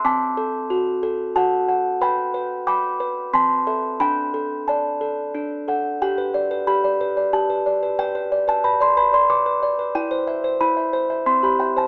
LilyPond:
\new Staff \with { instrumentName = "Music box" } { \time 3/4 \key g \major \tempo 4 = 91 << { <a'' d'''>2 <fis'' a''>4 | <g'' b''>4 <b'' d'''>4 <a'' c'''>4 | <g'' b''>4 <d'' a''>4 r4 | g''4 b''4 a''4 |
g''8. a''16 b''16 c'''16 b''16 c'''16 d'''4 | g''4 b''4 c'''16 b''16 g''16 a''16 | } \\ { c'8 a'8 fis'8 a'8 fis'8 fis''8 | b'8 b'8 g''8 b'8 c'8 <a' e''>8 | d'8 a'8. r16 a'8 d'8 <a' fis''>8 | g'16 b'16 d''16 b'16 g'16 d''16 b'16 d''16 g'16 b'16 d''16 b'16 |
b'16 b'16 d''16 b'16 b'16 d''16 b'16 d''16 b'16 b'16 d''16 b'16 | e'16 c''16 e''16 c''16 e'16 e''16 c''16 e''16 c'16 g'16 e''16 c''16 | } >> }